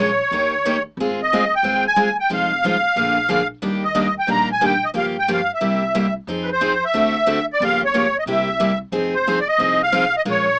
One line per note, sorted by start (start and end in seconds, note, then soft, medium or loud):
0.00 0.18 A#1 medium
0.00 0.10 A#4 medium
0.00 0.83 C#5 medium
0.31 0.84 D#2 medium
0.31 0.52 D#3 medium
0.31 0.53 A#3 medium
0.31 0.53 C#4 medium
0.31 0.53 G4 medium
0.31 0.53 A#4 medium
0.65 0.76 D#3 medium
0.65 0.76 A#3 medium
0.65 0.76 C#4 medium
0.65 0.77 G4 medium
0.65 0.76 A#4 medium
0.97 1.50 G#1 medium
0.97 1.20 G#3 medium
0.97 1.20 C4 medium
0.97 1.20 F4 medium
0.97 1.20 G#4 medium
1.23 1.54 D#5 medium
1.33 1.43 G#3 medium
1.33 1.43 C4 medium
1.33 1.43 F4 medium
1.33 1.44 G#4 medium
1.55 1.84 G5 medium
1.63 2.16 D#2 medium
1.63 1.85 G#3 medium
1.63 1.85 C4 medium
1.63 1.85 F4 medium
1.63 1.85 G#4 medium
1.87 2.17 G#5 medium
1.96 2.08 G#3 medium
1.96 2.08 C4 medium
1.96 2.08 F4 medium
1.96 2.08 G#4 medium
2.20 2.31 G5 medium
2.30 2.83 F1 medium
2.30 2.51 F3 medium
2.30 2.51 G#3 medium
2.30 2.51 D#4 medium
2.30 2.51 F4 medium
2.30 2.51 C5 medium
2.30 3.48 F5 medium
2.64 2.75 F3 medium
2.64 2.75 G#3 medium
2.64 2.75 D#4 medium
2.64 2.76 F4 medium
2.64 2.75 C5 medium
2.96 3.49 A#1 medium
2.96 3.17 D3 medium
2.96 3.17 F3 medium
2.96 3.18 A#3 medium
2.96 3.17 D4 medium
2.96 3.18 G#4 medium
3.29 3.40 D3 medium
3.29 3.40 F3 medium
3.29 3.41 A#3 medium
3.29 3.41 D4 medium
3.29 3.41 G#4 medium
3.62 4.16 D#2 medium
3.62 3.83 D#3 medium
3.62 3.83 G3 medium
3.62 3.83 A#3 medium
3.62 3.83 D4 medium
3.62 3.83 G4 medium
3.84 4.14 D#5 medium
3.95 4.06 D#3 medium
3.95 4.07 G3 medium
3.95 4.06 A#3 medium
3.95 4.07 D4 medium
3.95 4.07 G4 medium
4.19 4.30 G5 medium
4.27 4.82 A#1 medium
4.27 4.49 D#3 medium
4.27 4.49 G3 medium
4.27 4.49 A#3 medium
4.27 4.49 D4 medium
4.27 4.50 G4 medium
4.27 4.49 A#5 medium
4.52 4.64 G#5 medium
4.61 4.73 D#3 medium
4.61 4.73 G3 medium
4.61 4.73 A#3 medium
4.61 4.73 D4 medium
4.61 4.73 G4 medium
4.65 4.85 G5 medium
4.85 4.90 D#5 medium
4.94 5.48 G2 medium
4.94 5.15 C#3 medium
4.94 5.15 F3 medium
4.94 5.15 A#3 medium
4.94 5.16 F4 medium
4.94 5.16 G4 medium
4.98 5.06 F5 medium
5.19 5.30 G5 medium
5.28 5.40 C#3 medium
5.28 5.39 F3 medium
5.28 5.39 A#3 medium
5.28 5.40 F4 medium
5.28 5.40 G4 medium
5.33 5.52 F5 medium
5.54 6.14 E5 medium
5.61 6.15 C2 medium
5.61 5.82 C3 medium
5.61 5.82 G3 medium
5.61 5.82 A#3 medium
5.61 5.82 E4 medium
5.61 5.82 G4 medium
5.95 6.06 C3 medium
5.95 6.06 G3 medium
5.95 6.06 A#3 medium
5.95 6.06 E4 medium
5.95 6.06 G4 medium
6.27 6.81 F2 medium
6.27 6.49 F3 medium
6.27 6.49 C4 medium
6.27 6.49 D#4 medium
6.27 6.49 G#4 medium
6.43 6.50 B4 medium
6.52 6.84 C5 medium
6.61 6.72 F3 medium
6.61 6.72 C4 medium
6.61 6.72 D#4 medium
6.61 6.72 G#4 medium
6.85 7.46 E5 medium
6.94 7.47 D2 medium
6.94 7.15 D3 medium
6.94 7.15 A3 medium
6.94 7.15 C4 medium
6.94 7.15 F#4 medium
6.94 7.15 A4 medium
7.26 7.38 D3 medium
7.26 7.38 A3 medium
7.26 7.38 C4 medium
7.26 7.38 F#4 medium
7.26 7.38 A4 medium
7.53 7.64 D5 medium
7.60 8.13 G1 medium
7.60 7.82 C#3 medium
7.60 7.82 F3 medium
7.60 7.82 A#3 medium
7.60 7.82 F4 medium
7.60 7.82 G4 medium
7.64 7.81 F5 medium
7.85 8.17 C#5 medium
7.94 8.05 C#3 medium
7.94 8.05 F3 medium
7.94 8.05 A#3 medium
7.94 8.05 F4 medium
7.94 8.06 G4 medium
8.19 8.24 D#5 medium
8.26 8.79 C2 medium
8.26 8.48 C3 medium
8.26 8.48 G3 medium
8.26 8.48 A#3 medium
8.26 8.48 E4 medium
8.26 8.48 G4 medium
8.30 8.79 E5 medium
8.60 8.71 C3 medium
8.60 8.71 G3 medium
8.60 8.71 A#3 medium
8.60 8.71 E4 medium
8.60 8.71 G4 medium
8.92 9.46 F1 medium
8.92 9.14 F3 medium
8.92 9.14 C4 medium
8.92 9.14 D#4 medium
8.92 9.14 G#4 medium
9.14 9.39 C5 medium
9.27 9.38 F3 medium
9.27 9.38 C4 medium
9.27 9.38 D#4 medium
9.27 9.38 G#4 medium
9.40 9.48 D5 medium
9.48 9.82 D#5 medium
9.58 10.12 C2 medium
9.58 9.80 F3 medium
9.58 9.80 C4 medium
9.58 9.80 D#4 medium
9.58 9.81 G#4 medium
9.83 10.15 F5 medium
9.92 10.04 F3 medium
9.92 10.04 C4 medium
9.92 10.04 D#4 medium
9.92 10.05 G#4 medium
10.17 10.22 D#5 medium
10.25 10.59 A#1 medium
10.25 10.47 F3 medium
10.25 10.47 G#3 medium
10.25 10.46 C#4 medium
10.25 10.47 F4 medium
10.25 10.47 A#4 medium
10.31 10.59 C#5 medium